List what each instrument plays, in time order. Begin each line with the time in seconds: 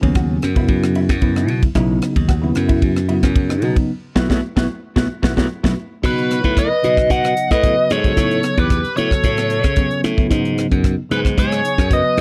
0.01 slap bass D#2, tine electric piano C#3 F#3 B3 C#4, kick, ride
0.15 clean electric guitar F#4, kick, cross-stick, ride
0.42 slap bass F#2, cross-stick, ride
0.55 tine electric piano C#3 F#3 B3 E4, clean electric guitar E4, kick, ride
0.68 slap bass F#2, kick, ride
0.84 cross-stick
0.95 clean electric guitar E4, ride
1.09 slap bass F#2, kick, cross-stick, ride
1.21 tine electric piano C#3 F#3 B3 E4, kick, ride
1.36 clean electric guitar D#4, cross-stick
1.48 slap bass B2, ride
1.63 kick, ride
1.75 slap bass B1, tine electric piano C#3 F#3 B3 D#4, clean electric guitar E4, kick, cross-stick, ride
2.02 cross-stick, ride
2.16 slap bass D#2, kick, ride
2.29 clean electric guitar F#4, kick, cross-stick, ride
2.42 tine electric piano C#3 F#3 B3 E4
2.55 slap bass F#2, cross-stick, ride
2.69 clean electric guitar E4, kick, ride
2.82 slap bass F#2, kick, ride
2.97 cross-stick
3.09 tine electric piano C#3 F#3 B3 F#4, clean electric guitar E4, ride
3.23 slap bass F#2, kick, cross-stick, ride
3.36 kick, ride
3.49 clean electric guitar D#4, cross-stick
3.62 slap bass B2, tine electric piano C#3 F#3 B3 D#4, ride
3.76 kick, ride
4.15 slap bass B1, tine electric piano F#3 A3 B3, clean electric guitar B3 E4 F#4, kick, snare
4.29 slap bass B1, tine electric piano F#3 A3 B3, clean electric guitar B3 E4 F#4, kick, snare
4.56 slap bass B1, tine electric piano F#3 A3 B3, clean electric guitar B3 E4 F#4, kick, snare
4.96 slap bass B1, tine electric piano F#3 A3 B3, clean electric guitar B3 E4 F#4, kick, snare
5.22 slap bass B1, tine electric piano F#3 A3 B3, clean electric guitar B3 E4 F#4, kick, snare
5.37 slap bass B1, tine electric piano F#3 A3 B3, clean electric guitar B3 E4 F#4, kick, snare
5.63 slap bass B1, tine electric piano F#3 A3 B3, clean electric guitar B3 E4 F#4, kick, snare
6.02 slap bass B2, tine electric piano C#3 F#3 B3 D#4, lead electric guitar B4, kick, cross-stick, crash
6.08 flute F#4
6.18 closed hi-hat
6.31 cross-stick, closed hi-hat
6.44 slap bass A2, kick, closed hi-hat
6.57 flute B4, lead electric guitar D#5, kick, cross-stick, closed hi-hat
6.82 slap bass B2, tine electric piano C#3 F#3 B3 D#4, closed hi-hat
6.97 kick, cross-stick
7.10 slap bass B2, flute D#5, lead electric guitar F#5, kick, closed hi-hat
7.24 cross-stick, closed hi-hat
7.37 closed hi-hat
7.51 slap bass A2, flute B4, lead electric guitar D#5, kick, cross-stick, closed hi-hat
7.63 tine electric piano C#3 F#3 B3 F#4, kick, closed hi-hat
7.90 slap bass G#2, flute A4, lead electric guitar C#5, cross-stick, closed hi-hat
8.04 tine electric piano C#3 F#3 B3 F#4, kick, closed hi-hat
8.17 slap bass A2, tine electric piano C#3 F#3 B3 D#4, kick, cross-stick, closed hi-hat
8.31 closed hi-hat
8.43 cross-stick, closed hi-hat
8.58 slap bass E2, flute G4, lead electric guitar B4, kick, closed hi-hat
8.70 kick, cross-stick, closed hi-hat
8.85 muted slap bass stroke, closed hi-hat
8.96 slap bass A2, tine electric piano C#3 F#3 B3 F#4, flute A4, lead electric guitar C#5, closed hi-hat
9.11 kick, cross-stick
9.24 slap bass A2, kick, closed hi-hat
9.37 cross-stick, closed hi-hat
9.50 closed hi-hat
9.64 slap bass C#3, kick, cross-stick, closed hi-hat
9.76 tine electric piano C#3 F#3 B3 C#4, kick, closed hi-hat
9.91 closed hi-hat
10.04 slap bass A2, cross-stick, closed hi-hat
10.17 tine electric piano C#3 F#3 B3 E4, kick
10.30 slap bass G#2, tine electric piano C#3 F#3 B3 D#4, kick, cross-stick, closed hi-hat
10.45 closed hi-hat
10.58 cross-stick, closed hi-hat
10.72 slap bass F#2, kick, closed hi-hat
10.84 kick, cross-stick, closed hi-hat
11.09 slap bass G#2, tine electric piano C#3 F#3 B3 D#4, flute G#4, lead electric guitar B4, closed hi-hat
11.25 kick, cross-stick
11.38 slap bass G#2, flute G#4, lead electric guitar C#5, kick, closed hi-hat
11.52 cross-stick, closed hi-hat
11.65 closed hi-hat
11.78 slap bass F#2, kick, cross-stick, closed hi-hat
11.89 tine electric piano C#3 F#3 B3 F#4, flute B4, lead electric guitar D#5, kick, closed hi-hat
12.17 slap bass D#2, closed hi-hat